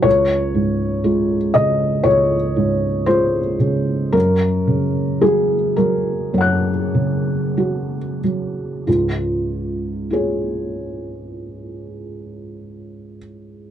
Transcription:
<<
  \new Staff \with { instrumentName = "Felt piano" } { \time 4/4 \key des \major \tempo 4 = 52 << { r1 | r2 <des'' ges'' ges'''>2 | r4 <f' aes' des''>2. | } \\ { des''4. ees''8 des''4 c''4 | bes'4 aes'8 bes'2 r8 | f'1 | } >> }
  \new Staff \with { instrumentName = "Felt piano" } { \clef bass \time 4/4 \key des \major des,8 aes,8 <aes f'>8 des8 des,8 aes,8 <aes f'>8 des8 | ges,8 des8 <ges ges'>8 ges8 ges,8 des8 <ges ges'>8 ges8 | <des, aes,>1 | }
>>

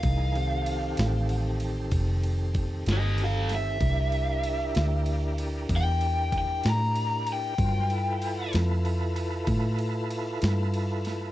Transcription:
<<
  \new Staff \with { instrumentName = "Lead electric guitar" } { \time 12/8 \key c \mixolydian \tempo 4. = 64 f''2~ f''8 r2 <g' ees''>8 <a' f''>8 e''8~ | e''2~ e''8 r8 g''4 g''8 bes''4 g''8~ | g''4. r1 r8 | }
  \new Staff \with { instrumentName = "Tonewheel organ" } { \time 12/8 \key c \mixolydian <e ees' aes' bes'>8 <ees c' g' a'>1~ <ees c' g' a'>4. | <d' e' g' bes'>1. | <fis f' bes' c''>8 <e' f' a' b'>1~ <e' f' a' b'>4. | }
  \new Staff \with { instrumentName = "Fingered electric bass" } { \clef bass \time 12/8 \key c \mixolydian c,4. a,,4. f,,4. g,,4. | c,4. d,4. e,4. a,4. | g,4. f,4. a,4. g,4. | }
  \new DrumStaff \with { instrumentName = "Drums" } \drummode { \time 12/8 <bd cymr>8 cymr8 cymr8 <cymr sn>8 cymr8 cymr8 <bd cymr>8 cymr8 <bd cymr>8 <cymr sn>8 cymr8 <cymr sn>8 | <bd cymr>8 cymr8 cymr8 <cymr sn>8 cymr8 cymr8 <bd cymr>8 cymr8 <bd cymr>8 <cymr sn>8 cymr8 cymr8 | <bd cymr>8 cymr8 cymr8 <cymr sn>8 cymr8 cymr8 <bd cymr>8 cymr8 cymr8 <cymr sn>8 cymr8 <cymr sn>8 | }
>>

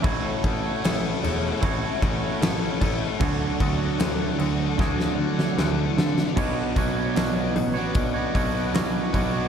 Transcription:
<<
  \new Staff \with { instrumentName = "String machine" } { \time 4/4 \key b \dorian \tempo 4 = 76 << { <a' cis'''>1~ | <a' cis'''>1 | <b' cis'''>1 | } \\ { <e'' fis''>1 | <d' fis''>1 | fis''1 | } >> }
  \new Staff \with { instrumentName = "Clean electric guitar" } { \time 4/4 \key b \dorian <a e' fis' cis''>2 <a e' fis' cis''>2 | <d fis a d' fis' cis''>2 <d fis a d' fis' cis''>2 | <b, fis b d' fis' cis''>8 <b d' fis' cis''>16 <b d' fis' cis''>16 <b, fis b d' fis' cis''>16 <b d' fis' cis''>8 <b d' fis' cis''>8 <b d' fis' cis''>16 <b d' fis' cis''>8 <b, fis b d' fis' cis''>8 <b d' fis' cis''>16 <b d' fis' cis''>16 | }
  \new Staff \with { instrumentName = "Overdriven electric guitar" } { \time 4/4 \key b \dorian <a, e a cis' e' a'>8 <a cis' e' a'>8 <a cis' e' a'>8 <a cis' e' a'>8 <a, e a cis' e' a'>8 <a cis' e' a'>8 <a cis' e' a'>8 <a cis' e' a'>8 | <d a d' fis' a'>8 <d' fis' a'>8 <a d' fis' a'>8 <d' fis' a'>8 <d a d' fis' a'>8 <d' fis' a'>8 <a d' fis' a'>8 <d' fis' a'>8 | <b, fis b d' fis'>8 <fis b d' fis'>8 <b, fis b d' fis'>16 <b d' fis'>8 <b d' fis'>8 <b d' fis'>16 <fis b d' fis'>16 <b d' fis'>16 <b, fis b d' fis'>8 <fis b d' fis'>16 <b d' fis'>16 | }
  \new Staff \with { instrumentName = "Grand piano" } { \clef bass \time 4/4 \key b \dorian a,,8 a,,8 a,,8 e,,8 a,,8 a,,8 a,,8 a,,8 | d,8 d,8 d,8 d,8 d,8 d8 d,8 d8 | b,,8 b,,8 b,,8 a,,8 b,,8 b,,8 b,,8 b,,8 | }
  \new DrumStaff \with { instrumentName = "Drums" } \drummode { \time 4/4 <cymc bd>8 <cymc bd>8 <cymc sn>8 cymc8 <cymc bd>8 <cymc bd>8 <cymc sn>8 <cymc bd>8 | <cymc bd>8 <cymc bd>8 <cymc sn>8 cymc8 <bd sn>16 sn8 sn16 sn8 sn16 sn16 | <cymc bd>8 <hho bd>8 <hho sn>8 hho8 <hho bd>8 <hho bd>8 <hho sn>8 <hho bd>8 | }
>>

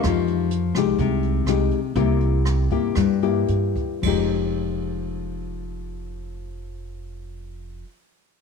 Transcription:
<<
  \new Staff \with { instrumentName = "Nylon-string guitar" } { \time 4/4 \key f \minor \tempo 4 = 109 << { <aes ees' g'>4 r8 <aes ees' g'>4. <aes ees' g'>8 r8 | <bes e' g'>4. <bes e' g'>4 <bes e' g'>4. | <f aes ees' g'>1~ | <f aes ees' g'>1 | } \\ { f2 c2 | c2 g,2 | r1 | r1 | } >> }
  \new Staff \with { instrumentName = "Upright bass" } { \clef bass \time 4/4 \key f \minor f,4. c,8 c,4 c,8 r8 | c,4. g,8 g,4 g,8 r8 | f,,1~ | f,,1 | }
  \new DrumStaff \with { instrumentName = "Drums" } \drummode { \time 4/4 <hh bd ss>8 hh8 hh8 <hh ss>8 <hh bd>8 hh8 <hh ss>8 hh8 | <hh bd>8 hh8 <hh ss>8 <hh bd>8 <hh bd ss>8 hh8 hh8 <hh bd>8 | <cymc bd>4 r4 r4 r4 | r4 r4 r4 r4 | }
>>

